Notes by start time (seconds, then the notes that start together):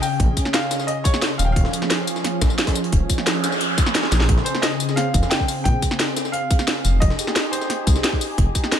Already playing: C#3 C#4 G#4
0.02 G5, closed hi-hat, open hi-hat, tambourine
0.20 A#1, kick, closed hi-hat
0.37 kick, closed hi-hat, tambourine
0.45 snare
0.53 F5, snare, closed hi-hat, tambourine
0.71 snare, closed hi-hat, tambourine
0.79 snare, tambourine
0.87 D#5, closed hi-hat
1.04 C#5, kick, closed hi-hat, tambourine
1.14 snare, tambourine
1.22 snare, closed hi-hat
1.38 D#1 F3 C#4 G#4 F5, closed hi-hat, tambourine
1.45 G5
1.52 D#1 F5, kick
1.56 closed hi-hat
1.65 snare
1.73 closed hi-hat, tambourine
1.82 snare
1.90 snare, closed hi-hat, tambourine
2.07 closed hi-hat, tambourine
2.16 snare, tambourine
2.24 snare, closed hi-hat
2.41 A#1, kick, snare, closed hi-hat, tambourine
2.50 tambourine
2.58 snare, closed hi-hat
2.67 kick, snare, closed hi-hat
2.75 closed hi-hat, tambourine
2.84 closed hi-hat
2.92 D#1, kick, closed hi-hat, noise sweep
3.10 kick, closed hi-hat, tambourine
3.18 snare
3.27 snare, closed hi-hat, tambourine
3.44 snare, closed hi-hat, tambourine
3.52 snare, tambourine
3.61 closed hi-hat
3.78 kick, snare, closed hi-hat, tambourine
3.86 snare, tambourine
3.95 snare, closed hi-hat
4.03 snare
4.12 A#1, snare, closed hi-hat, tambourine
4.20 A#1, snare
4.29 A#1 C#3 C4, kick, closed hi-hat
4.38 snare
4.45 C5, closed hi-hat, tambourine
4.55 snare
4.62 D#5, snare, closed hi-hat, tambourine
4.80 closed hi-hat, tambourine
4.89 snare, tambourine
4.96 F5, snare, closed hi-hat
5.14 F1, kick, closed hi-hat, tambourine
5.23 snare, tambourine
5.30 G5, snare, closed hi-hat
5.40 kick, snare
5.48 closed hi-hat, open hi-hat, tambourine
5.64 A#1 G5, kick, closed hi-hat
5.82 kick, closed hi-hat, tambourine
5.91 snare
6.00 snare, closed hi-hat, tambourine
6.16 snare, closed hi-hat, tambourine
6.25 snare, tambourine
6.32 F5, closed hi-hat
6.51 kick, closed hi-hat, tambourine
6.59 snare, tambourine
6.68 snare, closed hi-hat
6.85 F1, closed hi-hat, tambourine
7.00 F1 D#4 G4 G#4 D#5, kick, closed hi-hat
7.10 snare
7.19 closed hi-hat, tambourine
7.27 snare
7.36 snare, closed hi-hat, tambourine
7.51 C5, closed hi-hat, tambourine
7.61 snare, tambourine
7.70 snare, closed hi-hat
7.87 C2, kick, closed hi-hat, tambourine
7.96 snare, tambourine
8.04 snare, closed hi-hat
8.13 kick, snare
8.21 closed hi-hat, open hi-hat, tambourine
8.38 F1, kick, closed hi-hat
8.55 kick, closed hi-hat, tambourine
8.64 snare
8.72 snare, closed hi-hat, tambourine